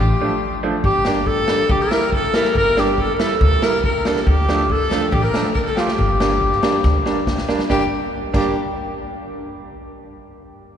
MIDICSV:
0, 0, Header, 1, 6, 480
1, 0, Start_track
1, 0, Key_signature, -2, "minor"
1, 0, Tempo, 428571
1, 945, Time_signature, 4, 2, 24, 8
1, 12064, End_track
2, 0, Start_track
2, 0, Title_t, "Clarinet"
2, 0, Program_c, 0, 71
2, 0, Note_on_c, 0, 67, 90
2, 693, Note_off_c, 0, 67, 0
2, 951, Note_on_c, 0, 67, 108
2, 1171, Note_off_c, 0, 67, 0
2, 1188, Note_on_c, 0, 67, 95
2, 1420, Note_on_c, 0, 69, 97
2, 1437, Note_off_c, 0, 67, 0
2, 1911, Note_on_c, 0, 67, 113
2, 1928, Note_off_c, 0, 69, 0
2, 2031, Note_on_c, 0, 70, 114
2, 2047, Note_off_c, 0, 67, 0
2, 2392, Note_on_c, 0, 69, 100
2, 2408, Note_off_c, 0, 70, 0
2, 2621, Note_on_c, 0, 70, 111
2, 2638, Note_off_c, 0, 69, 0
2, 2863, Note_off_c, 0, 70, 0
2, 2881, Note_on_c, 0, 70, 125
2, 3128, Note_on_c, 0, 67, 101
2, 3145, Note_off_c, 0, 70, 0
2, 3365, Note_on_c, 0, 69, 102
2, 3382, Note_off_c, 0, 67, 0
2, 3507, Note_off_c, 0, 69, 0
2, 3514, Note_on_c, 0, 70, 84
2, 3600, Note_on_c, 0, 69, 112
2, 3617, Note_off_c, 0, 70, 0
2, 4080, Note_on_c, 0, 70, 103
2, 4097, Note_off_c, 0, 69, 0
2, 4312, Note_off_c, 0, 70, 0
2, 4319, Note_on_c, 0, 70, 102
2, 4713, Note_on_c, 0, 69, 62
2, 4730, Note_off_c, 0, 70, 0
2, 4809, Note_on_c, 0, 67, 109
2, 4826, Note_off_c, 0, 69, 0
2, 5281, Note_on_c, 0, 69, 104
2, 5298, Note_off_c, 0, 67, 0
2, 5751, Note_on_c, 0, 67, 96
2, 5767, Note_off_c, 0, 69, 0
2, 5860, Note_off_c, 0, 67, 0
2, 5867, Note_on_c, 0, 70, 94
2, 6000, Note_on_c, 0, 69, 87
2, 6016, Note_off_c, 0, 70, 0
2, 6231, Note_off_c, 0, 69, 0
2, 6242, Note_on_c, 0, 70, 88
2, 6354, Note_on_c, 0, 69, 83
2, 6371, Note_off_c, 0, 70, 0
2, 6486, Note_on_c, 0, 67, 99
2, 6503, Note_off_c, 0, 69, 0
2, 8154, Note_off_c, 0, 67, 0
2, 8630, Note_on_c, 0, 67, 95
2, 8760, Note_off_c, 0, 67, 0
2, 9342, Note_on_c, 0, 67, 85
2, 9565, Note_off_c, 0, 67, 0
2, 12064, End_track
3, 0, Start_track
3, 0, Title_t, "Violin"
3, 0, Program_c, 1, 40
3, 0, Note_on_c, 1, 67, 74
3, 710, Note_off_c, 1, 67, 0
3, 945, Note_on_c, 1, 67, 99
3, 1391, Note_off_c, 1, 67, 0
3, 1419, Note_on_c, 1, 69, 106
3, 1909, Note_on_c, 1, 67, 96
3, 1926, Note_off_c, 1, 69, 0
3, 2035, Note_on_c, 1, 70, 113
3, 2052, Note_off_c, 1, 67, 0
3, 2390, Note_off_c, 1, 70, 0
3, 2395, Note_on_c, 1, 69, 104
3, 2837, Note_off_c, 1, 69, 0
3, 2880, Note_on_c, 1, 70, 101
3, 3124, Note_on_c, 1, 67, 87
3, 3141, Note_off_c, 1, 70, 0
3, 3346, Note_on_c, 1, 69, 100
3, 3363, Note_off_c, 1, 67, 0
3, 3560, Note_off_c, 1, 69, 0
3, 3567, Note_on_c, 1, 69, 80
3, 3798, Note_off_c, 1, 69, 0
3, 3816, Note_on_c, 1, 69, 99
3, 4062, Note_on_c, 1, 70, 105
3, 4078, Note_off_c, 1, 69, 0
3, 4303, Note_off_c, 1, 70, 0
3, 4312, Note_on_c, 1, 70, 85
3, 4561, Note_on_c, 1, 69, 73
3, 4578, Note_off_c, 1, 70, 0
3, 4770, Note_on_c, 1, 67, 93
3, 4787, Note_off_c, 1, 69, 0
3, 5257, Note_off_c, 1, 67, 0
3, 5274, Note_on_c, 1, 69, 107
3, 5716, Note_off_c, 1, 69, 0
3, 5731, Note_on_c, 1, 67, 91
3, 5853, Note_on_c, 1, 70, 107
3, 5870, Note_off_c, 1, 67, 0
3, 6200, Note_off_c, 1, 70, 0
3, 6206, Note_on_c, 1, 70, 80
3, 6326, Note_off_c, 1, 70, 0
3, 6332, Note_on_c, 1, 69, 85
3, 6443, Note_on_c, 1, 67, 77
3, 6460, Note_off_c, 1, 69, 0
3, 8132, Note_off_c, 1, 67, 0
3, 8623, Note_on_c, 1, 67, 112
3, 8756, Note_off_c, 1, 67, 0
3, 9331, Note_on_c, 1, 67, 80
3, 9559, Note_off_c, 1, 67, 0
3, 12064, End_track
4, 0, Start_track
4, 0, Title_t, "Upright piano"
4, 0, Program_c, 2, 0
4, 237, Note_on_c, 2, 62, 67
4, 240, Note_on_c, 2, 57, 68
4, 241, Note_on_c, 2, 53, 71
4, 351, Note_off_c, 2, 62, 0
4, 353, Note_off_c, 2, 53, 0
4, 353, Note_off_c, 2, 57, 0
4, 706, Note_on_c, 2, 53, 91
4, 706, Note_on_c, 2, 62, 77
4, 710, Note_on_c, 2, 57, 76
4, 826, Note_off_c, 2, 53, 0
4, 826, Note_off_c, 2, 62, 0
4, 828, Note_off_c, 2, 57, 0
4, 1191, Note_on_c, 2, 58, 69
4, 1195, Note_on_c, 2, 55, 70
4, 1195, Note_on_c, 2, 62, 83
4, 1308, Note_off_c, 2, 58, 0
4, 1310, Note_off_c, 2, 55, 0
4, 1310, Note_off_c, 2, 62, 0
4, 1667, Note_on_c, 2, 55, 74
4, 1670, Note_on_c, 2, 58, 70
4, 1671, Note_on_c, 2, 62, 70
4, 1786, Note_off_c, 2, 55, 0
4, 1787, Note_off_c, 2, 58, 0
4, 1788, Note_off_c, 2, 62, 0
4, 2147, Note_on_c, 2, 64, 85
4, 2148, Note_on_c, 2, 58, 65
4, 2151, Note_on_c, 2, 55, 60
4, 2266, Note_off_c, 2, 58, 0
4, 2266, Note_off_c, 2, 64, 0
4, 2268, Note_off_c, 2, 55, 0
4, 2635, Note_on_c, 2, 55, 73
4, 2635, Note_on_c, 2, 58, 65
4, 2639, Note_on_c, 2, 64, 87
4, 2750, Note_off_c, 2, 55, 0
4, 2750, Note_off_c, 2, 58, 0
4, 2752, Note_off_c, 2, 64, 0
4, 3096, Note_on_c, 2, 58, 74
4, 3099, Note_on_c, 2, 55, 75
4, 3100, Note_on_c, 2, 62, 89
4, 3221, Note_off_c, 2, 58, 0
4, 3222, Note_off_c, 2, 55, 0
4, 3223, Note_off_c, 2, 62, 0
4, 3572, Note_on_c, 2, 58, 65
4, 3575, Note_on_c, 2, 55, 72
4, 3576, Note_on_c, 2, 64, 85
4, 3698, Note_off_c, 2, 58, 0
4, 3700, Note_off_c, 2, 55, 0
4, 3701, Note_off_c, 2, 64, 0
4, 4058, Note_on_c, 2, 55, 68
4, 4059, Note_on_c, 2, 64, 72
4, 4060, Note_on_c, 2, 58, 61
4, 4181, Note_off_c, 2, 55, 0
4, 4182, Note_off_c, 2, 58, 0
4, 4182, Note_off_c, 2, 64, 0
4, 4547, Note_on_c, 2, 55, 63
4, 4547, Note_on_c, 2, 58, 64
4, 4550, Note_on_c, 2, 62, 79
4, 4665, Note_off_c, 2, 58, 0
4, 4666, Note_off_c, 2, 55, 0
4, 4667, Note_off_c, 2, 62, 0
4, 5029, Note_on_c, 2, 53, 79
4, 5029, Note_on_c, 2, 57, 74
4, 5031, Note_on_c, 2, 62, 80
4, 5147, Note_off_c, 2, 53, 0
4, 5147, Note_off_c, 2, 57, 0
4, 5147, Note_off_c, 2, 62, 0
4, 5511, Note_on_c, 2, 53, 70
4, 5512, Note_on_c, 2, 57, 67
4, 5512, Note_on_c, 2, 62, 80
4, 5627, Note_off_c, 2, 53, 0
4, 5628, Note_off_c, 2, 57, 0
4, 5628, Note_off_c, 2, 62, 0
4, 5995, Note_on_c, 2, 62, 67
4, 5997, Note_on_c, 2, 53, 70
4, 6000, Note_on_c, 2, 57, 63
4, 6109, Note_off_c, 2, 62, 0
4, 6111, Note_off_c, 2, 53, 0
4, 6112, Note_off_c, 2, 57, 0
4, 6468, Note_on_c, 2, 57, 56
4, 6471, Note_on_c, 2, 53, 63
4, 6472, Note_on_c, 2, 65, 87
4, 6585, Note_off_c, 2, 57, 0
4, 6587, Note_off_c, 2, 53, 0
4, 6588, Note_off_c, 2, 65, 0
4, 6952, Note_on_c, 2, 62, 80
4, 6954, Note_on_c, 2, 55, 73
4, 6954, Note_on_c, 2, 58, 68
4, 7068, Note_off_c, 2, 62, 0
4, 7069, Note_off_c, 2, 55, 0
4, 7069, Note_off_c, 2, 58, 0
4, 7424, Note_on_c, 2, 55, 88
4, 7428, Note_on_c, 2, 58, 78
4, 7430, Note_on_c, 2, 62, 95
4, 7543, Note_off_c, 2, 55, 0
4, 7545, Note_off_c, 2, 58, 0
4, 7546, Note_off_c, 2, 62, 0
4, 7907, Note_on_c, 2, 62, 83
4, 7909, Note_on_c, 2, 55, 75
4, 7909, Note_on_c, 2, 58, 64
4, 8025, Note_off_c, 2, 55, 0
4, 8025, Note_off_c, 2, 62, 0
4, 8026, Note_off_c, 2, 58, 0
4, 8383, Note_on_c, 2, 62, 93
4, 8385, Note_on_c, 2, 55, 75
4, 8385, Note_on_c, 2, 58, 75
4, 8503, Note_off_c, 2, 55, 0
4, 8503, Note_off_c, 2, 58, 0
4, 8503, Note_off_c, 2, 62, 0
4, 8622, Note_on_c, 2, 62, 92
4, 8623, Note_on_c, 2, 58, 81
4, 8624, Note_on_c, 2, 55, 80
4, 8756, Note_off_c, 2, 62, 0
4, 8757, Note_off_c, 2, 55, 0
4, 8757, Note_off_c, 2, 58, 0
4, 9335, Note_on_c, 2, 58, 83
4, 9336, Note_on_c, 2, 62, 89
4, 9337, Note_on_c, 2, 55, 80
4, 9561, Note_off_c, 2, 58, 0
4, 9562, Note_off_c, 2, 55, 0
4, 9562, Note_off_c, 2, 62, 0
4, 12064, End_track
5, 0, Start_track
5, 0, Title_t, "Upright bass"
5, 0, Program_c, 3, 32
5, 0, Note_on_c, 3, 33, 103
5, 129, Note_off_c, 3, 33, 0
5, 940, Note_on_c, 3, 31, 93
5, 1517, Note_off_c, 3, 31, 0
5, 1897, Note_on_c, 3, 38, 113
5, 2043, Note_off_c, 3, 38, 0
5, 2858, Note_on_c, 3, 31, 99
5, 3436, Note_off_c, 3, 31, 0
5, 3818, Note_on_c, 3, 38, 111
5, 3964, Note_off_c, 3, 38, 0
5, 4776, Note_on_c, 3, 38, 95
5, 5354, Note_off_c, 3, 38, 0
5, 5737, Note_on_c, 3, 33, 112
5, 5883, Note_off_c, 3, 33, 0
5, 6701, Note_on_c, 3, 31, 105
5, 7277, Note_off_c, 3, 31, 0
5, 7661, Note_on_c, 3, 38, 120
5, 7806, Note_off_c, 3, 38, 0
5, 8620, Note_on_c, 3, 31, 78
5, 8755, Note_off_c, 3, 31, 0
5, 9340, Note_on_c, 3, 31, 78
5, 9564, Note_off_c, 3, 31, 0
5, 12064, End_track
6, 0, Start_track
6, 0, Title_t, "Drums"
6, 940, Note_on_c, 9, 36, 84
6, 1052, Note_off_c, 9, 36, 0
6, 1174, Note_on_c, 9, 38, 83
6, 1286, Note_off_c, 9, 38, 0
6, 1417, Note_on_c, 9, 36, 63
6, 1529, Note_off_c, 9, 36, 0
6, 1654, Note_on_c, 9, 38, 95
6, 1766, Note_off_c, 9, 38, 0
6, 1899, Note_on_c, 9, 36, 102
6, 2011, Note_off_c, 9, 36, 0
6, 2027, Note_on_c, 9, 38, 23
6, 2139, Note_off_c, 9, 38, 0
6, 2142, Note_on_c, 9, 38, 90
6, 2254, Note_off_c, 9, 38, 0
6, 2380, Note_on_c, 9, 36, 84
6, 2492, Note_off_c, 9, 36, 0
6, 2504, Note_on_c, 9, 38, 25
6, 2616, Note_off_c, 9, 38, 0
6, 2617, Note_on_c, 9, 38, 95
6, 2729, Note_off_c, 9, 38, 0
6, 2741, Note_on_c, 9, 38, 56
6, 2853, Note_off_c, 9, 38, 0
6, 2860, Note_on_c, 9, 36, 86
6, 2972, Note_off_c, 9, 36, 0
6, 3105, Note_on_c, 9, 38, 83
6, 3217, Note_off_c, 9, 38, 0
6, 3338, Note_on_c, 9, 36, 61
6, 3450, Note_off_c, 9, 36, 0
6, 3579, Note_on_c, 9, 38, 91
6, 3691, Note_off_c, 9, 38, 0
6, 3819, Note_on_c, 9, 36, 100
6, 3931, Note_off_c, 9, 36, 0
6, 3942, Note_on_c, 9, 38, 26
6, 4054, Note_off_c, 9, 38, 0
6, 4057, Note_on_c, 9, 38, 90
6, 4169, Note_off_c, 9, 38, 0
6, 4298, Note_on_c, 9, 36, 90
6, 4410, Note_off_c, 9, 36, 0
6, 4539, Note_on_c, 9, 38, 90
6, 4651, Note_off_c, 9, 38, 0
6, 4661, Note_on_c, 9, 38, 58
6, 4773, Note_off_c, 9, 38, 0
6, 4780, Note_on_c, 9, 36, 87
6, 4892, Note_off_c, 9, 36, 0
6, 5024, Note_on_c, 9, 38, 83
6, 5136, Note_off_c, 9, 38, 0
6, 5260, Note_on_c, 9, 36, 70
6, 5372, Note_off_c, 9, 36, 0
6, 5502, Note_on_c, 9, 38, 93
6, 5614, Note_off_c, 9, 38, 0
6, 5740, Note_on_c, 9, 36, 101
6, 5852, Note_off_c, 9, 36, 0
6, 5862, Note_on_c, 9, 38, 25
6, 5974, Note_off_c, 9, 38, 0
6, 5981, Note_on_c, 9, 38, 87
6, 6093, Note_off_c, 9, 38, 0
6, 6221, Note_on_c, 9, 36, 77
6, 6222, Note_on_c, 9, 38, 30
6, 6333, Note_off_c, 9, 36, 0
6, 6334, Note_off_c, 9, 38, 0
6, 6339, Note_on_c, 9, 38, 30
6, 6451, Note_off_c, 9, 38, 0
6, 6463, Note_on_c, 9, 38, 89
6, 6575, Note_off_c, 9, 38, 0
6, 6588, Note_on_c, 9, 38, 64
6, 6700, Note_off_c, 9, 38, 0
6, 6704, Note_on_c, 9, 36, 75
6, 6816, Note_off_c, 9, 36, 0
6, 6948, Note_on_c, 9, 38, 97
6, 7060, Note_off_c, 9, 38, 0
6, 7184, Note_on_c, 9, 36, 68
6, 7296, Note_off_c, 9, 36, 0
6, 7310, Note_on_c, 9, 38, 34
6, 7422, Note_off_c, 9, 38, 0
6, 7424, Note_on_c, 9, 38, 94
6, 7536, Note_off_c, 9, 38, 0
6, 7663, Note_on_c, 9, 36, 89
6, 7664, Note_on_c, 9, 38, 48
6, 7775, Note_off_c, 9, 36, 0
6, 7776, Note_off_c, 9, 38, 0
6, 7903, Note_on_c, 9, 38, 68
6, 8015, Note_off_c, 9, 38, 0
6, 8144, Note_on_c, 9, 36, 74
6, 8146, Note_on_c, 9, 38, 85
6, 8256, Note_off_c, 9, 36, 0
6, 8258, Note_off_c, 9, 38, 0
6, 8268, Note_on_c, 9, 38, 71
6, 8380, Note_off_c, 9, 38, 0
6, 8387, Note_on_c, 9, 38, 71
6, 8499, Note_off_c, 9, 38, 0
6, 8502, Note_on_c, 9, 38, 67
6, 8614, Note_off_c, 9, 38, 0
6, 8621, Note_on_c, 9, 38, 75
6, 8623, Note_on_c, 9, 36, 68
6, 8733, Note_off_c, 9, 38, 0
6, 8735, Note_off_c, 9, 36, 0
6, 9342, Note_on_c, 9, 36, 95
6, 9344, Note_on_c, 9, 49, 72
6, 9454, Note_off_c, 9, 36, 0
6, 9456, Note_off_c, 9, 49, 0
6, 12064, End_track
0, 0, End_of_file